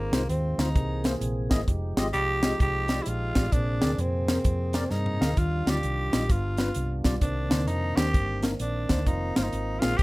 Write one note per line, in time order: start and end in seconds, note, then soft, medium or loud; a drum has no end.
0.00 0.55 G#2 medium
0.00 0.74 D#3 medium
0.00 0.75 G#3 medium
0.00 0.28 A#3 medium
0.00 1.66 C4 medium
0.00 0.74 F4 medium
0.12 0.26 C2 medium
0.12 0.21 G#3 medium
0.12 0.22 D#4 medium
0.12 0.22 F4 medium
0.12 0.22 C5 medium
0.12 snare loud
0.12 closed hi-hat medium
0.29 0.54 D#2 medium
0.29 0.62 C4 medium
0.29 closed hi-hat medium
0.58 0.72 D2 medium
0.58 0.68 G#3 medium
0.58 0.68 D#4 medium
0.58 1.06 D#4 medium
0.58 0.68 F4 medium
0.58 0.68 C5 medium
0.58 snare loud
0.58 closed hi-hat medium
0.75 1.15 C2 medium
0.75 1.47 C3 medium
0.75 1.67 E3 medium
0.75 1.67 A#3 medium
0.75 1.67 G#4 medium
0.75 kick loud
0.75 closed hi-hat medium
1.04 1.13 A#3 medium
1.04 1.13 E4 medium
1.04 1.14 G#4 medium
1.04 1.14 C5 medium
1.04 snare medium
1.04 closed hi-hat medium
1.21 1.46 A#1 medium
1.21 closed hi-hat medium
1.50 1.65 G#1 medium
1.50 1.59 A#3 medium
1.50 1.59 E4 medium
1.50 1.60 G#4 medium
1.50 1.60 D#5 medium
1.50 kick medium
1.50 snare loud
1.50 closed hi-hat medium
1.68 1.93 F1 loud
1.68 3.51 F3 medium
1.68 3.51 G#3 medium
1.68 3.51 D#4 medium
1.68 3.51 G4 medium
1.68 kick medium
1.68 closed hi-hat medium
1.97 2.11 G#1 medium
1.97 2.06 G#3 medium
1.97 2.06 F4 medium
1.97 2.06 G4 medium
1.97 2.07 D#5 medium
1.97 snare loud
1.97 closed hi-hat medium
2.13 2.53 C2 medium
2.13 2.56 G4 loud
2.13 closed hi-hat medium
2.43 2.52 G#3 medium
2.43 2.52 F4 medium
2.43 2.52 G4 medium
2.43 2.53 D#5 medium
2.43 snare loud
2.43 closed hi-hat medium
2.60 3.00 C2 medium
2.60 3.04 G4 medium
2.60 kick loud
2.60 closed hi-hat medium
2.88 2.98 G#3 medium
2.88 2.98 F4 medium
2.88 2.99 G4 medium
2.88 2.99 D5 medium
2.88 snare medium
2.88 closed hi-hat medium
3.02 3.10 E4 medium
3.02 closed hi-hat medium
3.07 3.32 A#1 medium
3.07 3.54 F4 medium
3.35 3.50 A1 medium
3.35 3.44 G#3 medium
3.35 3.44 F4 medium
3.35 3.45 G4 medium
3.35 3.45 D5 medium
3.35 kick medium
3.35 snare loud
3.35 closed hi-hat medium
3.52 3.78 A#1 medium
3.52 4.24 A#2 medium
3.52 5.36 C3 medium
3.52 5.36 A#3 medium
3.52 5.36 C4 medium
3.52 4.01 D4 medium
3.52 5.36 G#4 medium
3.52 kick loud
3.52 closed hi-hat medium
3.81 3.96 D2 medium
3.81 3.90 C4 medium
3.81 3.90 G#4 medium
3.81 3.91 A#4 medium
3.81 3.91 D5 medium
3.81 snare loud
3.81 closed hi-hat medium
3.98 4.37 F2 medium
3.98 4.91 C4 medium
3.98 closed hi-hat medium
4.28 4.37 C4 medium
4.28 4.37 G#4 medium
4.28 4.37 A#4 medium
4.28 4.37 C5 medium
4.28 snare loud
4.28 closed hi-hat medium
4.44 4.84 F2 medium
4.44 kick loud
4.44 closed hi-hat medium
4.73 4.83 C4 medium
4.73 4.83 G#4 medium
4.73 4.83 A#4 medium
4.73 4.83 D5 medium
4.73 snare loud
4.73 closed hi-hat medium
4.90 5.16 G2 medium
4.90 5.40 D#4 medium
4.90 snare soft
5.06 mid tom medium
5.20 5.35 D2 medium
5.20 5.29 C4 medium
5.20 5.29 G#4 medium
5.20 5.29 A#4 medium
5.20 5.29 F5 medium
5.20 snare loud
5.37 5.62 D#2 medium
5.37 6.28 D#3 medium
5.37 6.09 D#3 medium
5.37 7.20 G3 medium
5.37 6.28 D4 medium
5.37 7.20 F4 medium
5.37 5.71 F4 medium
5.37 kick medium
5.37 closed hi-hat medium
5.66 5.81 D2 medium
5.66 5.75 G3 medium
5.66 5.76 D#4 medium
5.66 5.76 F4 medium
5.66 6.33 G4 medium
5.66 5.76 D5 medium
5.66 snare loud
5.66 closed hi-hat medium
5.83 6.09 C2 medium
5.83 closed hi-hat medium
6.13 6.27 A#1 medium
6.13 6.22 G3 medium
6.13 6.22 D#4 medium
6.13 6.22 F4 medium
6.13 6.22 D#5 medium
6.13 snare loud
6.13 closed hi-hat medium
6.29 6.69 G1 medium
6.29 7.01 G2 medium
6.29 7.21 B3 medium
6.29 9.04 D4 medium
6.29 7.01 F4 medium
6.29 kick loud
6.29 closed hi-hat medium
6.57 6.67 G3 medium
6.57 6.67 D4 medium
6.57 6.68 F4 medium
6.57 6.68 B4 medium
6.57 snare medium
6.57 closed hi-hat medium
6.75 7.01 C2 medium
6.75 closed hi-hat loud
7.04 7.19 B1 medium
7.04 7.14 G3 medium
7.04 7.14 D4 medium
7.04 7.14 F4 medium
7.04 7.14 D5 medium
7.04 kick medium
7.04 snare medium
7.04 closed hi-hat medium
7.21 7.47 C2 loud
7.21 7.93 C3 medium
7.21 9.05 D#3 medium
7.21 10.03 A#3 medium
7.21 10.03 C4 medium
7.21 7.68 D4 medium
7.21 kick medium
7.21 closed hi-hat medium
7.50 7.67 D2 medium
7.50 7.59 A#3 medium
7.50 7.60 D4 medium
7.50 7.60 D#4 medium
7.50 7.60 C5 medium
7.50 snare loud
7.50 closed hi-hat medium
7.67 7.93 F2 medium
7.67 7.98 D#4 medium
7.67 closed hi-hat medium
7.96 8.16 D#2 medium
7.96 8.06 A#3 medium
7.96 8.06 D4 medium
7.96 8.06 D#4 medium
7.96 8.43 G4 loud
7.96 8.06 C5 medium
7.96 snare loud
7.96 closed hi-hat medium
8.14 8.54 G1 medium
8.14 kick loud
8.14 closed hi-hat medium
8.43 8.52 A#3 medium
8.43 8.52 D4 medium
8.43 8.52 D#4 medium
8.43 8.53 A#4 medium
8.43 snare medium
8.43 closed hi-hat medium
8.60 8.85 A#1 medium
8.60 9.08 D4 medium
8.60 closed hi-hat medium
8.89 9.04 D2 medium
8.89 8.98 A#3 medium
8.89 8.99 D4 medium
8.89 8.99 D#4 medium
8.89 8.99 C5 medium
8.89 kick medium
8.89 snare medium
8.89 closed hi-hat medium
9.06 9.32 F1 loud
9.06 10.03 D#3 medium
9.06 9.38 D#4 medium
9.06 10.03 F4 medium
9.06 kick loud
9.06 closed hi-hat medium
9.36 9.51 G1 medium
9.36 9.45 A#3 medium
9.36 9.45 D#4 medium
9.36 9.45 F4 medium
9.36 9.46 C5 medium
9.36 snare loud
9.36 closed hi-hat medium
9.43 9.81 D#4 medium
9.53 9.78 G#1 medium
9.53 closed hi-hat medium
9.80 9.97 A#1 medium
9.80 9.91 A#3 medium
9.80 9.91 D#4 medium
9.80 9.99 F4 loud
9.80 9.91 F4 medium
9.80 9.91 G#4 medium
9.80 snare loud
9.80 closed hi-hat medium
9.97 10.03 C2 medium
9.97 10.03 G4 loud
9.97 kick loud
9.97 closed hi-hat medium